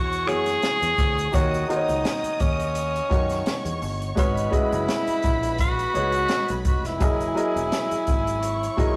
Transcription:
Already playing: E2 E3 B3 F#4 G#4 C#5 D#5 C#6
0.12 closed hi-hat, shaker
0.26 F#2 E3 B3 F#4 G#4 C#5, closed hi-hat
0.46 snare, closed hi-hat, shaker
0.62 snare, closed hi-hat, shaker
0.82 E2, closed hi-hat, shaker
0.98 D2, kick, closed hi-hat, shaker
1.18 closed hi-hat, shaker
1.32 D#2 D#3 D#4 F#4 A#4 C#5 D#5 D#6, kick, closed hi-hat, shaker
1.54 closed hi-hat, shaker
1.68 D#3 D#4 F#4 A#4 C5, closed hi-hat
1.76 C#5
1.88 C#2, closed hi-hat, shaker
2.05 snare, closed hi-hat, shaker
2.23 muted fingered electric bass stroke, closed hi-hat, shaker
2.40 D#2 C#4, kick, closed hi-hat, shaker
2.60 closed hi-hat, shaker
2.75 closed hi-hat, shaker
2.96 closed hi-hat, shaker
3.09 F#2 D#3 D#4 F#4 A#4 C#5 C#6, kick, closed hi-hat
3.29 snare, closed hi-hat, shaker
3.46 snare, closed hi-hat, shaker
3.65 E2, closed hi-hat, shaker
3.82 G1, open hi-hat, shaker
4.02 closed hi-hat, shaker
4.15 G#1 G#3 C#4 D#4 F#4 G#4 B4 C#5 B5, kick, closed hi-hat, shaker
4.37 closed hi-hat, shaker
4.51 G#3 C#4 E4 F#4 G#4 B4 D#5, kick, closed hi-hat
4.72 F#1, closed hi-hat, shaker
4.88 snare, closed hi-hat, shaker
5.07 muted fingered electric bass stroke, closed hi-hat, shaker
5.22 A#1, kick, closed hi-hat, shaker
5.43 closed hi-hat, shaker
5.58 F#4, kick, closed hi-hat, shaker
5.79 closed hi-hat, shaker
5.94 C#2 G#3 D#4 F#4 G#4 B4 C#5, closed hi-hat
6.12 closed hi-hat, shaker
6.28 snare, closed hi-hat, shaker
6.48 B1, closed hi-hat, shaker
6.65 F1 F#4, kick, closed hi-hat, shaker
6.84 E4, snare, closed hi-hat, shaker
6.99 F#1 F#3 E4 G#4 A#4 D#5 G#5, kick, closed hi-hat, shaker
7.20 closed hi-hat, shaker
7.35 F#3 E4 G#4 A#4 D#5, closed hi-hat
7.56 E1, closed hi-hat, shaker
7.72 snare, closed hi-hat, shaker
7.91 muted fingered electric bass stroke, closed hi-hat, shaker
8.07 G#1, kick, closed hi-hat, shaker
8.27 closed hi-hat, shaker
8.42 C#5 C#6, closed hi-hat, shaker
8.63 closed hi-hat, shaker
8.77 B1 F#3 E4 G#4 A#4 D#5, kick, closed hi-hat

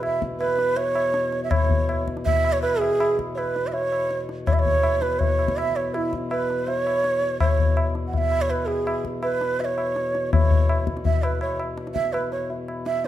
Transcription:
Already playing: E2 B2
0.03 E5, tabla na
0.22 tabla ke
0.40 B4, tabla na
0.58 tabla te
0.77 C#5, tabla tin
0.95 tabla na
1.14 tabla te
1.32 tabla te
1.44 E5
1.51 E2 B2 C#5, tabla na, tabla ge
1.70 tabla ge
1.89 tabla na
2.08 tabla ke
2.17 tabla te
2.25 E5, tabla tin, tabla ge
2.45 tabla na
2.53 C#5
2.62 B4, tabla na
2.79 G#4, tabla na
3.00 tabla na
3.19 tabla ke
3.35 B4 C#5, tabla na
3.56 tabla te
3.67 E5
3.73 C#5, tabla tin
3.92 tabla na
4.11 tabla te
4.29 tabla te
4.47 C#5, tabla na, tabla ge
4.53 E5
4.60 C#5
4.66 tabla ge
4.83 tabla na
5.02 B4, tabla te
5.19 C#5, tabla tin, tabla ge
5.39 tabla na
5.48 tabla ke
5.57 E5, tabla na
5.76 C#5, tabla na
5.94 E4, tabla na
6.13 tabla ke
6.31 B4, tabla na
6.50 tabla te
6.67 C#5, tabla tin
6.87 tabla na
7.04 tabla te
7.22 tabla te
7.40 E2 B2 C#5, tabla na, tabla ge
7.59 tabla ge
7.77 tabla na
7.95 tabla te
8.07 F#5
8.14 F#5, tabla tin, tabla ge
8.18 E5
8.32 tabla na
8.41 C#5
8.50 B4, tabla na
8.68 G#4, tabla na
8.87 tabla na
9.05 tabla ke
9.23 B4, tabla na
9.41 tabla te
9.60 E5, tabla tin
9.65 C#5
9.78 tabla na
9.96 tabla te
10.15 tabla te
10.33 C#5, tabla na, tabla ge
10.51 tabla ge
10.69 tabla na
10.87 tabla ke
10.97 tabla te
11.05 E5, tabla tin, tabla ge
11.23 B4, tabla na
11.41 C#5, tabla na
11.60 tabla na
11.78 tabla te
11.87 tabla te
11.94 E5, tabla ke
12.05 tabla te
12.13 B4, tabla na
12.32 C#5, tabla te
12.50 tabla tin
12.68 tabla na
12.86 E5, tabla te
13.04 tabla te

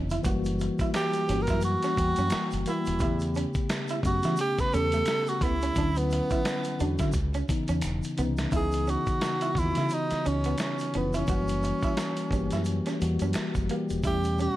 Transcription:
Already playing: F1 C#3 E3 B3 E4 D#5
0.10 E4, closed hi-hat, shaker
0.23 F#1 E3 G3 A#3 F#4, kick, closed hi-hat, shaker
0.44 closed hi-hat, shaker
0.59 muted clean electric guitar stroke, closed hi-hat, shaker
0.79 E4, muted fingered electric bass stroke, kick, closed hi-hat, shaker
0.94 G4, finger snap, muted clean electric guitar stroke, snare, closed hi-hat, shaker
1.13 closed hi-hat, shaker
1.27 G1 E3 G3 A#3 C#4 F#4, closed hi-hat, shaker
1.42 A#4
1.47 F#2 E4, kick, snare, closed hi-hat, shaker
1.61 F#4, closed hi-hat, shaker
1.83 C#4, snare, closed hi-hat, shaker
1.96 E2 E3 G3 A#3 G5, muted clean electric guitar stroke, kick, closed hi-hat, shaker
2.16 F#2 C#4, closed hi-hat, shaker
2.30 finger snap, muted fingered electric bass stroke, snare, closed hi-hat, shaker
2.51 F#1, closed hi-hat, shaker
2.65 E3 G3 A#3 E4 F#4, closed hi-hat, shaker
2.85 D#1, closed hi-hat, shaker
2.99 E2 B2 A3 B3 E4 G4, kick, closed hi-hat, shaker
3.06 C#3
3.20 closed hi-hat, shaker
3.35 C#4, closed hi-hat, shaker
3.54 muted fingered electric bass stroke, kick, closed hi-hat, shaker
3.69 finger snap, snare, closed hi-hat, shaker
3.88 E4, closed hi-hat, shaker
4.03 F#2 C#3 A3 B3 C#4 F#4, muted clean electric guitar stroke, kick, closed hi-hat, shaker
4.23 E3 E4, snare, closed hi-hat, shaker
4.37 muted clean electric guitar stroke, closed hi-hat, shaker
4.41 G4
4.58 B4, muted fingered electric bass stroke, kick, snare, closed hi-hat, shaker
4.72 E2 C#3 A3 B3 C#4 G4 A4, closed hi-hat, shaker
4.92 A3, closed hi-hat, shaker
5.06 finger snap, muted clean electric guitar stroke, snare, closed hi-hat, shaker
5.27 F#4, closed hi-hat, shaker
5.41 C#2 B3 E4, kick, closed hi-hat, shaker
5.62 C#4, closed hi-hat, shaker
5.76 D2 D3 F#3 C#4 D4 E4, kick, closed hi-hat, shaker
5.95 B3, closed hi-hat, shaker
6.10 muted clean electric guitar stroke, closed hi-hat, shaker
6.30 E4, muted fingered electric bass stroke, kick, closed hi-hat, shaker
6.45 finger snap, muted clean electric guitar stroke, snare, closed hi-hat, shaker
6.64 closed hi-hat, shaker
6.79 E2 D3 F#3 C#4 D4 F#4, closed hi-hat, shaker
6.99 D3 E4, kick, snare, closed hi-hat, shaker
7.12 C#2, kick, closed hi-hat, shaker
7.34 C#4, closed hi-hat, shaker
7.48 C#3 E3 B3 D#4, muted clean electric guitar stroke, muted fingered electric bass stroke, kick, closed hi-hat, shaker
7.68 E2 C#4, closed hi-hat, shaker
7.81 E1, finger snap, closed hi-hat, shaker
8.03 closed hi-hat, shaker
8.17 C2 E3 B3 C#4 D#4, closed hi-hat, shaker
8.37 snare, closed hi-hat, shaker
8.51 C#2 C#3 E3 B3 D#4 E4, kick, closed hi-hat, shaker
8.56 G#4
8.72 closed hi-hat, shaker
8.87 C#4 F#4, closed hi-hat, shaker
9.07 muted fingered electric bass stroke, kick, closed hi-hat, shaker
9.21 finger snap, snare, closed hi-hat, shaker
9.41 E4, closed hi-hat, shaker
9.55 D#2 C#3 E3 B3 F4, muted clean electric guitar stroke, kick, closed hi-hat, shaker
9.59 E4
9.64 F#4
9.75 C#3 E4, snare, closed hi-hat, shaker
9.89 muted clean electric guitar stroke, closed hi-hat, shaker
9.94 D#4
10.10 muted fingered electric bass stroke, snare, closed hi-hat, shaker
10.25 C#2 C#4, closed hi-hat, shaker
10.44 B3, closed hi-hat, shaker
10.58 finger snap, muted clean electric guitar stroke, snare, closed hi-hat, shaker
10.62 C#4
10.79 closed hi-hat, shaker
10.93 F1 C#3 E3 B3 C#4 E4, closed hi-hat
11.13 C#4 E4, closed hi-hat, shaker
11.27 F#1 E3 G3 A#3 F#4, kick, closed hi-hat, shaker
11.48 closed hi-hat, shaker
11.63 muted clean electric guitar stroke, closed hi-hat, shaker
11.82 E4, muted fingered electric bass stroke, kick, closed hi-hat, shaker
11.97 finger snap, muted clean electric guitar stroke, snare, closed hi-hat, shaker
12.16 closed hi-hat, shaker
12.30 G1 E3 G3 A#3 C#4 G4, kick, closed hi-hat, shaker
12.51 F#2 E4, snare, closed hi-hat, shaker
12.65 closed hi-hat, shaker
12.86 C#4, snare, closed hi-hat, shaker
13.00 E2 E3 G3 A#3 F#4, muted clean electric guitar stroke, closed hi-hat, shaker
13.19 F#2 C#4, closed hi-hat, shaker
13.33 finger snap, muted fingered electric bass stroke, snare, closed hi-hat, shaker
13.55 F#1, kick, closed hi-hat, shaker
13.68 E3 G3 A#3 G4, closed hi-hat
13.89 D#1, closed hi-hat, shaker
14.03 E2 B2 G3 A3 C#4 E4 G4, kick, closed hi-hat, shaker
14.24 closed hi-hat, shaker
14.38 C#4 F#4, closed hi-hat, shaker

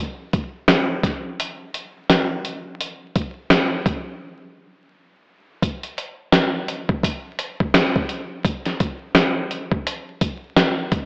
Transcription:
0.33 kick, closed hi-hat
0.68 snare, closed hi-hat
1.03 kick, snare, closed hi-hat
1.40 closed hi-hat
1.74 closed hi-hat
2.10 snare, closed hi-hat
2.45 closed hi-hat
2.81 closed hi-hat
3.16 kick, closed hi-hat
3.50 snare, closed hi-hat
3.86 kick, closed hi-hat
5.62 kick, closed hi-hat
5.83 closed hi-hat
5.98 closed hi-hat
6.32 snare, closed hi-hat
6.68 closed hi-hat
6.89 kick
7.03 kick, closed hi-hat
7.39 closed hi-hat
7.60 kick
7.74 snare, closed hi-hat
7.96 kick
8.09 closed hi-hat
8.45 kick, closed hi-hat
8.65 snare, closed hi-hat
8.80 kick, closed hi-hat
9.15 snare, closed hi-hat
9.51 closed hi-hat
9.71 kick
9.87 closed hi-hat
10.21 kick, closed hi-hat
10.56 snare, closed hi-hat
10.92 kick, closed hi-hat

